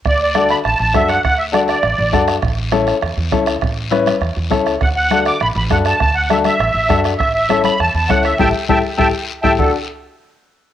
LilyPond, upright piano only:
\new Staff \with { instrumentName = "Upright piano" } { \time 4/4 \key d \major \tempo 4 = 201 r4 <d' fis' a'>8 r4. <d' fis' a'>8 r8 | r4 <d' fis' a'>8 r4. <d' fis' a'>8 r8 | r4 <cis' e' a'>8 r4. <cis' e' a'>8 r8 | r4 <cis' e' b'>8 r4. <cis' e' a'>8 r8 |
r4 <d' fis' a'>8 r4. <d' fis' a'>8 r8 | r4 <d' fis' a'>8 r4. <d' fis' a'>8 r8 | r4 <cis' e' a'>8 r4. <cis' e' a'>8 r8 | <e' g' a'>8 r8 <e' g' a'>8 r8 <e' g' a'>8 r4 <e' g' a'>8 |
<d' fis' a'>8 r2. r8 | }